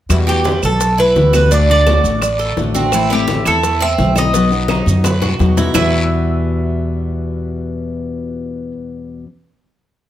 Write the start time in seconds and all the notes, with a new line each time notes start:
0.09 E2 B2 E3 G3 B3 E4 F#4, high bongo, high conga, long guiro, claves, maracas
0.27 E3 G3 B3 F#4 G4, high bongo, maracas
0.44 E3 G3 B3 F#4 B4, high bongo, high conga, short guiro, maracas
0.63 B1 A4, short guiro, claves, maracas
0.80 muted steel-string acoustic guitar stroke, high bongo, high conga, long guiro, maracas
0.98 E4 B4, high bongo, high conga, maracas
1.15 D2 E3 G3 B3 F#4, high bongo, low bongo, high conga, short guiro, maracas
1.33 E3 G3 B3 F#4 B4, high bongo, high conga, short guiro, claves, maracas
1.51 D3 A3 D4 F#4 D5, high bongo, high conga, long guiro, maracas
1.69 A3 D4 F#4 D5, high bongo, maracas
1.86 D3 A3 D4 F#4, high bongo, high conga, short guiro, claves, maracas
2.04 A1, high conga, short guiro, maracas
2.21 D5, muted steel-string acoustic guitar stroke, high bongo, high conga, long guiro, claves, maracas
2.39 A4, high bongo, high conga, maracas
2.57 A1 D3 A3 D4 F#4, high bongo, low bongo, high conga, short guiro, maracas
2.74 A3 C4 D4 F#4, high bongo, high conga, short guiro, maracas
2.91 E3 A3 C4 E4, high bongo, high conga, long guiro, claves, maracas
3.10 A3 C4 E4 G4, high bongo, high conga, maracas
3.28 E3 A3 C4 E4 A4, high bongo, high conga, short guiro, maracas
3.45 E2 E4 A4, short guiro, claves, maracas
3.63 muted steel-string acoustic guitar stroke, high bongo, high conga, long guiro, maracas
3.81 C4 E5, high bongo, high conga, maracas
3.98 B1 E3 A3 C4 E4, high bongo, low bongo, high conga, short guiro, maracas
4.15 A3 C4 D#4 E4 D#5, high bongo, high conga, short guiro, claves, maracas
4.33 B2 F#3 B3 D#4 F#4, high bongo, high conga, long guiro, maracas
4.51 F#3 B3 D#4 F#4, high bongo, high conga, maracas
4.68 F#3 B3 D#4 F#4, high bongo, high conga, short guiro, claves, maracas
4.86 F#2, high conga, short guiro, maracas
5.04 B4, muted steel-string acoustic guitar stroke, high bongo, high conga, long guiro, claves, maracas
5.22 F#4, high bongo, low conga, maracas
5.39 E2 F#3 B3 D#4 F#4, high bongo, low conga, short guiro, maracas
5.57 F#3 B3 D#4 E4 F#4, low bongo, low conga, short guiro, maracas
5.74 E2 B2 E3 G3 B3 E4 F#4 B4 E5, low bongo, low conga, long guiro, claves, maracas